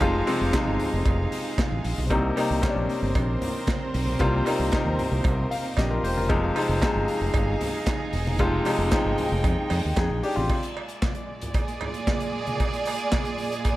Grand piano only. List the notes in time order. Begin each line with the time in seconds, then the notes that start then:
Already playing: G#3 D#4 F4
0.00 C3 F3 G#3 F4
0.27 C3 F3 G#3 C4
0.53 C3 F3 G#3 D#4
2.10 C3 G3 A#3 D#4
2.36 C3 G3 A#3 D#4
2.62 C3 G3 A#3 C#4
2.70 D4
4.19 C3 G3 A#3 F4
4.45 C3 G3 A#3 D#4
4.72 C3 G3 A#3 D#4
5.51 F5
5.78 D4 G4 D#5
5.91 F4 A#4
6.04 G4 C5
6.17 F4 A#4
6.29 C3 F3 G#3 D#4
6.55 C3 F3 G#3 D#4
6.81 C3 F3 G#3 D#4
8.39 C3 F3 G#3 F4
8.65 C3 F3 G#3 D#4
8.91 C3 F3 G#3 D#4
9.97 D#4 G#4
10.23 D4 G4
10.36 C4 F4